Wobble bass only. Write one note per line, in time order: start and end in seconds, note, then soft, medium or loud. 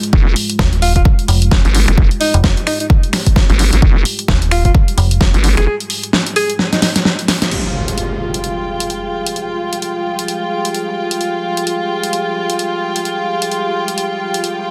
0.13 0.35 F1 loud
1.65 1.86 G1 loud
1.88 2.09 F1 loud
3.50 3.71 G1 loud
3.73 3.81 G#1 loud
3.82 4.04 F1 loud
5.34 5.55 G1 loud
5.57 5.67 F1 loud